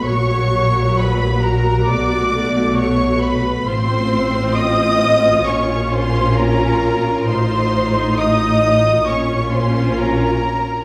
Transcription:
<<
  \new Staff \with { instrumentName = "Violin section" } { \time 4/4 \key b \dorian \tempo 4 = 67 cis'''4 b''8 ais''8 d'''4 cis'''8 b''8 | \key bes \minor c'''4 ees'''4 des'''8 c'''8 bes''4 | c'''4 ees'''4 des'''8 c'''8 bes''4 | }
  \new Staff \with { instrumentName = "Violin section" } { \time 4/4 \key b \dorian cis''4 b'8 ais'8 d''4 cis''8 b'8 | \key bes \minor c''4 ees''4 des''8 c''8 bes'4 | c''4 ees''4 des''8 c''8 bes'4 | }
  \new Staff \with { instrumentName = "Viola section" } { \time 4/4 \key b \dorian << { fis'1 | \key bes \minor f'1~ | f'2 f'2 | } \\ { fis2 a2 | c'2 des'2 | ees'2 des'2 | } >> }
  \new Staff \with { instrumentName = "Cello section" } { \clef bass \time 4/4 \key b \dorian ais,2 b,2 | \key bes \minor a,2 bes,2 | a,2 bes,2 | }
  \new Staff \with { instrumentName = "Double bass section" } { \clef bass \time 4/4 \key b \dorian ais,,2 b,,2 | \key bes \minor a,,2 bes,,2 | a,,2 bes,,2 | }
>>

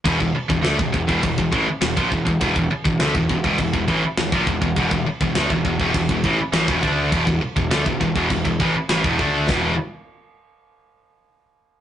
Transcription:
<<
  \new Staff \with { instrumentName = "Distorted electric guitar" } { \clef bass \time 4/4 \key c \lydian \tempo 4 = 102 <e, b,>16 <e, b,>16 r16 <e, b,>16 <d a>16 <e, b,>16 <e, b,>16 <e, b,>16 <e, b,>16 <e, b,>16 <a, e>16 r16 <e, b,>16 <ais, f>16 <e, b,>16 <e, b,>16 | <e, b,>16 <e, b,>16 r16 <e, b,>16 <d a>16 <e, b,>16 <e, b,>16 <e, b,>16 <e, b,>16 <e, b,>16 <a, e>16 r16 <e, b,>16 <ais, f>16 <e, b,>16 <e, b,>16 | <e, b,>16 <e, b,>16 r16 <e, b,>16 <d a>16 <e, b,>16 <e, b,>16 <e, b,>16 <e, b,>16 <e, b,>16 <a, e>16 r16 <a, e>16 <e, b,>16 <d a d'>8 | <e, b,>16 <e, b,>16 r16 <e, b,>16 <d a>16 <e, b,>16 <e, b,>16 <e, b,>16 <e, b,>16 <e, b,>16 <a, e>16 r16 <a, e>16 <e, b,>16 <d a d'>8 |
<e, b, e>8 r2. r8 | }
  \new Staff \with { instrumentName = "Picked electric bass" } { \clef bass \time 4/4 \key c \lydian e,,16 e,,16 r16 e,,16 d,16 e,,16 e,,16 e,,16 e,,16 e,,16 a,,16 r16 e,,16 ais,,16 e,,16 e,,16 | e,,16 e,,16 r16 e,,16 d,16 e,,16 e,,16 e,,16 e,,16 e,,16 a,,16 r16 e,,16 ais,,16 e,,16 e,,16 | e,,16 e,,16 r16 e,,16 d,16 e,,16 e,,16 e,,16 e,,16 e,,16 a,,16 r16 a,,16 e,,16 d,8 | e,,16 e,,16 r16 e,,16 d,16 e,,16 e,,16 e,,16 e,,16 e,,16 a,,16 r16 a,,16 e,,16 d,8 |
e,,8 r2. r8 | }
  \new DrumStaff \with { instrumentName = "Drums" } \drummode { \time 4/4 <cymc bd>16 bd8 bd16 <cymc sn>16 bd16 bd16 bd16 <cymc bd>16 bd16 bd8 <cymc sn>16 bd16 bd16 bd16 | <cymc bd>16 bd8 bd16 <cymc sn>16 bd16 bd16 bd16 <cymc bd>16 bd16 bd8 <cymc sn>16 bd16 bd16 bd16 | <cymc bd>16 bd8 bd16 <cymc sn>16 bd16 bd16 bd16 <cymc bd>16 bd16 bd8 <cymc sn>16 bd16 bd8 | <cymc bd>16 bd8 bd16 <cymc sn>16 bd16 bd16 bd16 <cymc bd>16 bd16 bd8 <cymc sn>16 bd16 bd8 |
<bd sn>4 r4 r4 r4 | }
>>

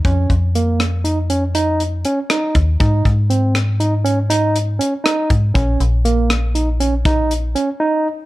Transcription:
<<
  \new Staff \with { instrumentName = "Tine electric piano" } { \time 11/8 \key aes \major \tempo 4 = 120 des'4 bes4 ees'8 des'8 ees'4 des'8 ees'4 | ees'4 c'4 ees'8 des'8 ees'4 des'8 ees'4 | des'4 bes4 ees'8 des'8 ees'4 des'8 ees'4 | }
  \new Staff \with { instrumentName = "FM bass" } { \clef bass \time 11/8 \key aes \major f,8 f,1 r8 ees,8 | aes,8 aes,1 r8 aes,8 | bes,,8 bes,,1 r4 | }
  \new DrumStaff \with { instrumentName = "Drums" } \drummode { \time 11/8 <hh bd>8 <hh bd>8 hh8 <hh ss>8 hh8 hh8 hh8 hh8 hh8 <hh ss>8 <hh bd>8 | <hh bd>8 <hh bd>8 hh8 <hh ss>8 hh8 hh8 hh8 hh8 hh8 <hh ss>8 <hh bd>8 | <hh bd>8 hh8 hh8 <hh ss>8 hh8 hh8 <hh bd>8 hh8 hh8 r4 | }
>>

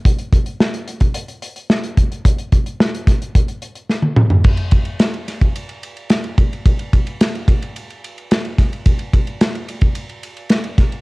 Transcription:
\new DrumStaff \with { instrumentName = "Drums" } \drummode { \time 4/4 \tempo 4 = 109 <hh bd>16 hh16 <hh bd>16 hh16 sn16 hh16 hh16 <hh bd>16 hh16 hh16 hh16 hh16 sn16 hh16 <hh bd>16 hh16 | <hh bd>16 hh16 <hh bd>16 hh16 sn16 hh16 <hh bd sn>16 hh16 <hh bd>16 hh16 hh16 hh16 sn16 tommh16 toml16 tomfh16 | <cymc bd>16 cymr16 <bd cymr>16 cymr16 <cymr sn>16 cymr16 <cymr sn>16 <bd cymr>16 cymr16 cymr16 cymr16 cymr16 <cymr sn>16 cymr16 <bd cymr>16 cymr16 | <bd cymr>16 cymr16 <bd cymr>16 cymr16 <cymr sn>16 cymr16 <bd cymr>16 cymr16 cymr16 cymr16 cymr16 cymr16 <cymr sn>16 cymr16 <bd cymr sn>16 cymr16 |
<bd cymr>16 cymr16 <bd cymr>16 cymr16 <cymr sn>16 cymr16 cymr16 <bd cymr>16 cymr16 cymr16 cymr16 cymr16 <cymr sn>16 cymr16 <bd cymr sn>16 cymr16 | }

